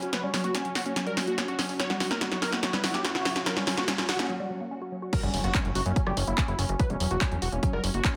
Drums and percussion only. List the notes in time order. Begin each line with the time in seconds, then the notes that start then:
0.02 closed hi-hat
0.13 snare, closed hi-hat
0.34 snare, open hi-hat
0.44 closed hi-hat
0.55 snare, closed hi-hat
0.65 closed hi-hat
0.75 snare, open hi-hat
0.86 closed hi-hat
0.96 snare, closed hi-hat
1.07 closed hi-hat
1.17 snare, open hi-hat
1.27 closed hi-hat
1.38 snare, closed hi-hat
1.48 closed hi-hat
1.59 snare, open hi-hat
1.69 open hi-hat
1.80 snare, closed hi-hat
1.90 snare
2.00 snare, open hi-hat
2.11 snare, closed hi-hat
2.21 snare, closed hi-hat
2.32 snare, closed hi-hat
2.42 snare, open hi-hat
2.52 snare, closed hi-hat
2.63 snare, closed hi-hat
2.73 snare, closed hi-hat
2.84 snare, open hi-hat
2.94 snare, closed hi-hat
3.05 snare, closed hi-hat
3.15 snare, closed hi-hat
3.25 snare, open hi-hat
3.36 snare, closed hi-hat
3.46 snare, closed hi-hat
3.57 snare
3.67 snare, open hi-hat
3.77 snare, closed hi-hat
3.88 snare, closed hi-hat
3.98 snare, closed hi-hat
4.09 snare, open hi-hat
4.19 snare, closed hi-hat
5.13 kick, closed hi-hat, crash
5.23 closed hi-hat
5.34 open hi-hat
5.44 cross-stick, closed hi-hat
5.54 kick, clap, closed hi-hat
5.65 closed hi-hat
5.75 open hi-hat
5.86 closed hi-hat
5.96 kick, closed hi-hat
6.07 cross-stick
6.17 open hi-hat
6.27 closed hi-hat
6.38 kick, clap, closed hi-hat
6.48 closed hi-hat
6.59 cross-stick, open hi-hat
6.69 closed hi-hat
6.79 kick, closed hi-hat
6.90 closed hi-hat
7.00 open hi-hat
7.11 closed hi-hat
7.21 kick, cross-stick, clap, closed hi-hat
7.32 closed hi-hat
7.42 open hi-hat
7.52 closed hi-hat
7.63 kick, closed hi-hat
7.73 cross-stick
7.84 open hi-hat
7.94 closed hi-hat
8.04 kick, clap, closed hi-hat